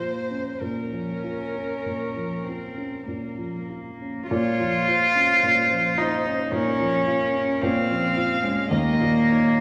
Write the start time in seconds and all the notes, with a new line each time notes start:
Already playing: A#2 F3 A#3 C5
0.00 F4
0.31 C#4
0.57 C#4 A#4
0.61 A#2
0.92 F3
1.24 F4
1.54 C#4
1.86 A#2
2.16 F3
2.44 C4
2.48 F4
2.78 C#4
3.04 A#2 A#3
3.38 F3
3.69 F4
4.01 C#4
4.27 A#2 F4 C#5
4.60 F3
4.88 F4 C5
5.15 C#4
5.43 A#2
5.70 F3
5.97 D#4 F4
6.25 C#4
6.52 A#2 C#4 A#4
6.80 F3
7.07 F4 A#4
7.34 C#4
7.61 A#2 C4 F5
7.89 F3
8.17 F4
8.43 G#3 C#4
8.70 D#2 A#3 D#5
9.00 A#2
9.30 D#4 C#5